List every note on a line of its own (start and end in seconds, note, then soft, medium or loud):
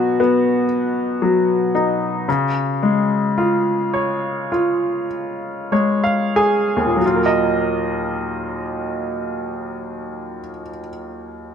0.00 2.24 B2 soft
0.00 0.66 F#3 soft
0.00 0.18 B3 soft
0.00 1.71 F#4 soft
0.20 2.24 B3 soft
1.22 2.24 F#3 soft
1.75 2.26 D#4 soft
2.29 6.99 C#3 soft
2.83 5.07 G#3 soft
3.38 4.50 F4 soft
3.94 5.71 C#5 soft
4.52 6.99 F4 soft
5.72 6.98 G#3 soft
5.72 6.02 C#5 soft
6.04 6.34 F5 soft
6.36 7.00 G#4 soft
6.36 6.98 G#5 soft
6.76 10.39 D#2 soft
6.86 10.49 A#2 soft
6.96 10.59 F#3 soft
7.06 10.69 F4 soft
7.16 10.79 A#4 soft
7.26 10.89 D#5 soft